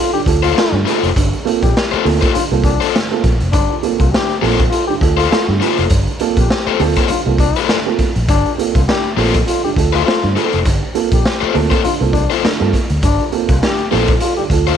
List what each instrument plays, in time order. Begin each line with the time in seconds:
Already playing: upright piano F4 A4
0.13 upright piano G2 D3, trombone G4, closed hi-hat
0.26 fingered electric bass D2, upright piano F4 A4, kick, closed hi-hat
0.43 overdriven electric guitar A#3 F4 A4 C5, trombone F4, closed hi-hat
0.54 trombone F4, upright piano F4 A4, snare
0.72 fingered electric bass G2, upright piano G2 D3
0.85 overdriven electric guitar A#3 F4 A4 C5, upright piano F4 A4, closed hi-hat
1.03 fingered electric bass F1, closed hi-hat
1.16 fingered electric bass G1, upright piano G2 D3, kick, closed hi-hat
1.33 closed hi-hat
1.45 upright piano A#3 C4 F4 A4, closed hi-hat
1.62 fingered electric bass A#1, upright piano F4 A4, trombone G4, kick, closed hi-hat
1.77 snare
1.91 overdriven electric guitar A#3 F4 A4 C5, muted fingered electric bass stroke, closed hi-hat
2.05 fingered electric bass D2, upright piano A#3 C4 F4 A4, open hi-hat
2.21 overdriven electric guitar A#3 F4 A4 C5, kick, closed hi-hat
2.34 upright piano G2 D3, trombone F4, muted fingered electric bass stroke, closed hi-hat
2.51 fingered electric bass C2, upright piano A#3 C4 F4 A4, closed hi-hat
2.64 trombone D4, upright piano F4 A4, kick, closed hi-hat
2.81 overdriven electric guitar A#3 F4 A4 C5, closed hi-hat
2.95 upright piano G2 D3, snare
3.11 upright piano A#3 C4 F4 A4
3.24 fingered electric bass A#1, upright piano F4 A4, kick, closed hi-hat
3.40 fingered electric bass F1, closed hi-hat
3.52 fingered electric bass G1, upright piano G2 D3, trombone D4, kick, closed hi-hat
3.70 upright piano F4 A4
3.83 upright piano A#3 C4 F4 A4, closed hi-hat
3.99 fingered electric bass C2, trombone F4, kick, closed hi-hat
4.12 upright piano G2 D3, trombone G4, snare
4.30 closed hi-hat
4.42 fingered electric bass A#1, overdriven electric guitar A#3 F4 A4 C5, upright piano A#3 C4 F4 A4, snare, open hi-hat
4.59 upright piano F4 A4, kick, closed hi-hat
4.70 trombone F4, upright piano F4 A4, closed hi-hat
4.87 upright piano G2 D3, trombone G4, closed hi-hat
5.01 fingered electric bass D2, upright piano F4 A4, kick, closed hi-hat
5.16 overdriven electric guitar A#3 F4 A4 C5, trombone F4, closed hi-hat
5.31 trombone F4, upright piano F4 A4, snare
5.49 fingered electric bass G2, upright piano G2 D3
5.60 overdriven electric guitar A#3 F4 A4 C5, upright piano F4 A4, closed hi-hat
5.78 fingered electric bass F1, closed hi-hat
5.90 fingered electric bass G1, upright piano G2 D3, kick, closed hi-hat
6.07 closed hi-hat
6.20 upright piano A#3 C4 F4 A4, closed hi-hat
6.37 fingered electric bass A#1, upright piano F4 A4, trombone G4, kick, closed hi-hat
6.50 snare
6.67 overdriven electric guitar A#3 F4 A4 C5, muted fingered electric bass stroke, closed hi-hat
6.80 fingered electric bass D2, upright piano A#3 C4 F4 A4, open hi-hat
6.96 overdriven electric guitar A#3 F4 A4 C5, kick, closed hi-hat
7.08 upright piano G2 D3, trombone F4, muted fingered electric bass stroke, closed hi-hat
7.26 fingered electric bass C2, upright piano A#3 C4 F4 A4
7.38 trombone D4, upright piano F4 A4, kick, closed hi-hat
7.56 overdriven electric guitar A#3 F4 A4 C5, closed hi-hat
7.69 upright piano G2 D3, snare
7.86 upright piano A#3 C4 F4 A4
7.99 upright piano F4 A4, muted fingered electric bass stroke, kick, closed hi-hat
8.16 fingered electric bass A#1, closed hi-hat
8.28 fingered electric bass G1, upright piano G2 D3, trombone D4, kick, closed hi-hat
8.46 upright piano F4 A4, closed hi-hat
8.58 upright piano A#3 C4 F4 A4, closed hi-hat
8.74 fingered electric bass C2, trombone F4, kick, closed hi-hat
8.88 upright piano G2 D3, trombone G4, snare
9.17 fingered electric bass A#1, overdriven electric guitar A#3 F4 A4 C5, upright piano A#3 C4 F4 A4, snare, open hi-hat
9.34 upright piano F4 A4, kick, closed hi-hat
9.47 trombone F4, upright piano F4 A4, closed hi-hat
9.64 upright piano G2 D3, trombone G4, closed hi-hat
9.76 fingered electric bass D2, upright piano F4 A4, kick, closed hi-hat
9.93 overdriven electric guitar A#3 F4 A4 C5, trombone F4, closed hi-hat
10.06 trombone F4, upright piano F4 A4, snare
10.23 upright piano G2 D3, fingered electric bass G2, closed hi-hat
10.36 overdriven electric guitar A#3 F4 A4 C5, upright piano F4 A4, closed hi-hat
10.53 fingered electric bass F1, closed hi-hat
10.65 fingered electric bass G1, upright piano G2 D3, kick, closed hi-hat
10.95 upright piano A#3 C4 F4 A4, closed hi-hat
11.12 fingered electric bass A#1, upright piano F4 A4, trombone G4, kick, closed hi-hat
11.26 snare
11.41 overdriven electric guitar A#3 F4 A4 C5, muted fingered electric bass stroke, closed hi-hat
11.54 fingered electric bass D2, upright piano A#3 C4 F4 A4, open hi-hat
11.70 overdriven electric guitar A#3 F4 A4 C5, kick, closed hi-hat
11.84 upright piano G2 D3, trombone F4, muted fingered electric bass stroke, closed hi-hat
12.00 fingered electric bass C2, upright piano A#3 C4 F4 A4, closed hi-hat
12.13 trombone D4, upright piano F4 A4, kick, closed hi-hat
12.30 overdriven electric guitar A#3 F4 A4 C5, closed hi-hat
12.43 upright piano G2 D3, muted fingered electric bass stroke, snare
12.60 fingered electric bass G2, upright piano A#3 C4 F4 A4
12.73 upright piano F4 A4, kick, closed hi-hat
12.90 fingered electric bass D2, closed hi-hat
13.02 fingered electric bass G1, upright piano G2 D3, trombone D4, kick, closed hi-hat
13.20 upright piano F4 A4, closed hi-hat
13.32 upright piano A#3 C4 F4 A4, closed hi-hat
13.49 fingered electric bass C2, trombone F4, kick, closed hi-hat
13.62 upright piano G2 D3, trombone G4, snare
13.78 closed hi-hat
13.91 fingered electric bass A#1, upright piano A#3 C4 F4 A4, overdriven electric guitar A#3 F4 A4 C5, snare, open hi-hat
14.08 upright piano F4 A4, kick, closed hi-hat
14.20 trombone F4, upright piano F4 A4, closed hi-hat
14.37 upright piano G2 D3, trombone G4, closed hi-hat
14.50 fingered electric bass D2, upright piano F4 A4, kick, closed hi-hat
14.67 overdriven electric guitar A#3 F4 A4 C5, trombone F4, closed hi-hat